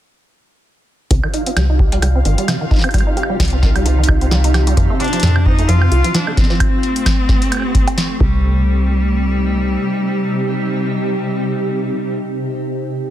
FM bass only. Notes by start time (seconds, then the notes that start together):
1.11 C2
1.57 C2
2.02 C2
2.25 G1
3.40 C2
3.86 C2
4.08 C2
4.31 C2
4.77 F2
5.23 F2
5.69 F2
5.91 C2
8.20 C2